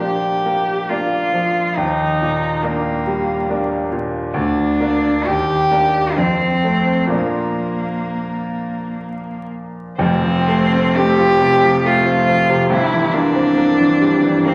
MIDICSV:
0, 0, Header, 1, 3, 480
1, 0, Start_track
1, 0, Key_signature, -2, "major"
1, 0, Tempo, 890208
1, 954, Tempo, 857143
1, 955, Time_signature, 3, 2, 24, 8
1, 2394, Tempo, 914634
1, 3354, Tempo, 955414
1, 5270, Key_signature, -1, "major"
1, 5754, Tempo, 874636
1, 7728, End_track
2, 0, Start_track
2, 0, Title_t, "Cello"
2, 0, Program_c, 0, 42
2, 0, Note_on_c, 0, 67, 68
2, 481, Note_on_c, 0, 65, 62
2, 489, Note_off_c, 0, 67, 0
2, 949, Note_on_c, 0, 63, 77
2, 957, Note_off_c, 0, 65, 0
2, 1444, Note_on_c, 0, 58, 73
2, 1452, Note_off_c, 0, 63, 0
2, 2158, Note_off_c, 0, 58, 0
2, 2389, Note_on_c, 0, 62, 78
2, 2878, Note_on_c, 0, 67, 90
2, 2886, Note_off_c, 0, 62, 0
2, 3357, Note_on_c, 0, 60, 83
2, 3365, Note_off_c, 0, 67, 0
2, 3831, Note_off_c, 0, 60, 0
2, 3841, Note_on_c, 0, 58, 67
2, 5013, Note_off_c, 0, 58, 0
2, 5267, Note_on_c, 0, 60, 97
2, 5766, Note_on_c, 0, 67, 102
2, 5774, Note_off_c, 0, 60, 0
2, 6253, Note_on_c, 0, 65, 81
2, 6261, Note_off_c, 0, 67, 0
2, 6714, Note_off_c, 0, 65, 0
2, 6717, Note_on_c, 0, 64, 89
2, 6955, Note_on_c, 0, 62, 107
2, 6963, Note_off_c, 0, 64, 0
2, 7689, Note_on_c, 0, 60, 87
2, 7698, Note_off_c, 0, 62, 0
2, 7728, Note_off_c, 0, 60, 0
2, 7728, End_track
3, 0, Start_track
3, 0, Title_t, "Grand piano"
3, 0, Program_c, 1, 0
3, 0, Control_c, 1, 64, 127
3, 0, Note_on_c, 1, 46, 43
3, 0, Note_on_c, 1, 53, 38
3, 0, Note_on_c, 1, 58, 31
3, 1, Note_on_c, 1, 62, 33
3, 147, Note_off_c, 1, 53, 0
3, 223, Note_off_c, 1, 58, 0
3, 224, Note_off_c, 1, 62, 0
3, 246, Note_on_c, 1, 58, 39
3, 476, Note_off_c, 1, 58, 0
3, 484, Note_on_c, 1, 58, 34
3, 488, Note_on_c, 1, 62, 37
3, 699, Note_off_c, 1, 58, 0
3, 701, Note_off_c, 1, 62, 0
3, 719, Note_on_c, 1, 53, 37
3, 934, Note_off_c, 1, 46, 0
3, 954, Note_off_c, 1, 53, 0
3, 954, Note_on_c, 1, 39, 53
3, 962, Control_c, 1, 64, 0
3, 1048, Control_c, 1, 64, 127
3, 1205, Note_on_c, 1, 46, 41
3, 1436, Note_on_c, 1, 58, 39
3, 1437, Note_on_c, 1, 62, 39
3, 1587, Note_off_c, 1, 46, 0
3, 1657, Note_off_c, 1, 58, 0
3, 1657, Note_off_c, 1, 62, 0
3, 1682, Note_on_c, 1, 55, 41
3, 1923, Note_on_c, 1, 58, 37
3, 1924, Note_on_c, 1, 62, 42
3, 2062, Note_off_c, 1, 55, 0
3, 2134, Note_off_c, 1, 58, 0
3, 2135, Note_off_c, 1, 62, 0
3, 2158, Note_on_c, 1, 46, 42
3, 2373, Note_off_c, 1, 39, 0
3, 2392, Note_on_c, 1, 38, 59
3, 2397, Note_off_c, 1, 46, 0
3, 2406, Control_c, 1, 64, 0
3, 2491, Control_c, 1, 64, 127
3, 2637, Note_on_c, 1, 58, 44
3, 2638, Note_on_c, 1, 62, 51
3, 2862, Note_off_c, 1, 58, 0
3, 2863, Note_off_c, 1, 62, 0
3, 2867, Note_off_c, 1, 38, 0
3, 2880, Note_on_c, 1, 39, 51
3, 2891, Control_c, 1, 64, 0
3, 2973, Control_c, 1, 64, 127
3, 3112, Note_on_c, 1, 58, 40
3, 3114, Note_on_c, 1, 62, 46
3, 3331, Note_off_c, 1, 58, 0
3, 3332, Note_off_c, 1, 62, 0
3, 3340, Note_off_c, 1, 39, 0
3, 3351, Note_on_c, 1, 41, 49
3, 3364, Control_c, 1, 64, 0
3, 3438, Control_c, 1, 64, 127
3, 3589, Note_on_c, 1, 57, 35
3, 3594, Note_on_c, 1, 60, 42
3, 3805, Note_on_c, 1, 46, 48
3, 3810, Note_off_c, 1, 57, 0
3, 3812, Note_off_c, 1, 60, 0
3, 3812, Note_on_c, 1, 53, 38
3, 3814, Note_off_c, 1, 41, 0
3, 3818, Note_on_c, 1, 58, 39
3, 3822, Note_on_c, 1, 62, 38
3, 3841, Control_c, 1, 64, 0
3, 3927, Control_c, 1, 64, 127
3, 5237, Note_off_c, 1, 46, 0
3, 5241, Note_off_c, 1, 53, 0
3, 5243, Note_off_c, 1, 58, 0
3, 5245, Note_off_c, 1, 62, 0
3, 5269, Note_on_c, 1, 29, 59
3, 5273, Note_on_c, 1, 41, 66
3, 5279, Control_c, 1, 64, 0
3, 5362, Control_c, 1, 64, 127
3, 5392, Note_on_c, 1, 53, 46
3, 5518, Note_on_c, 1, 57, 54
3, 5588, Note_off_c, 1, 53, 0
3, 5646, Note_on_c, 1, 60, 51
3, 5710, Note_off_c, 1, 57, 0
3, 5763, Note_on_c, 1, 57, 47
3, 5835, Note_off_c, 1, 60, 0
3, 5882, Note_on_c, 1, 53, 53
3, 5956, Note_off_c, 1, 57, 0
3, 6004, Note_on_c, 1, 48, 52
3, 6073, Note_off_c, 1, 53, 0
3, 6132, Note_on_c, 1, 53, 53
3, 6192, Note_off_c, 1, 48, 0
3, 6248, Note_on_c, 1, 57, 49
3, 6316, Note_off_c, 1, 53, 0
3, 6365, Note_on_c, 1, 60, 44
3, 6434, Note_off_c, 1, 57, 0
3, 6485, Note_on_c, 1, 53, 41
3, 6552, Note_off_c, 1, 60, 0
3, 6604, Note_on_c, 1, 48, 49
3, 6672, Note_off_c, 1, 53, 0
3, 6693, Note_off_c, 1, 29, 0
3, 6695, Note_off_c, 1, 41, 0
3, 6718, Note_on_c, 1, 31, 61
3, 6719, Note_off_c, 1, 48, 0
3, 6723, Note_on_c, 1, 43, 60
3, 6724, Control_c, 1, 64, 0
3, 6806, Control_c, 1, 64, 127
3, 6844, Note_on_c, 1, 52, 46
3, 6957, Note_on_c, 1, 58, 50
3, 7031, Note_off_c, 1, 52, 0
3, 7074, Note_on_c, 1, 60, 50
3, 7148, Note_off_c, 1, 58, 0
3, 7190, Note_on_c, 1, 58, 47
3, 7268, Note_off_c, 1, 60, 0
3, 7314, Note_on_c, 1, 52, 44
3, 7386, Note_off_c, 1, 58, 0
3, 7434, Note_on_c, 1, 55, 44
3, 7508, Note_off_c, 1, 52, 0
3, 7551, Note_on_c, 1, 52, 48
3, 7627, Note_off_c, 1, 55, 0
3, 7676, Note_on_c, 1, 58, 50
3, 7728, Note_off_c, 1, 31, 0
3, 7728, Note_off_c, 1, 43, 0
3, 7728, Note_off_c, 1, 52, 0
3, 7728, Note_off_c, 1, 58, 0
3, 7728, End_track
0, 0, End_of_file